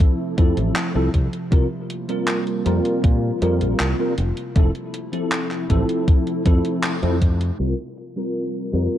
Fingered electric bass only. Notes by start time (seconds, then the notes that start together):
0.38 F2
0.57 A1
0.95 C2
1.14 C2
1.52 C2
2.66 F2
3.04 A#2
3.42 F2
3.61 A#1
3.80 C2
4.18 F1
4.56 F1
5.70 A1
6.46 F2
7.03 F2
7.60 C2
8.73 F2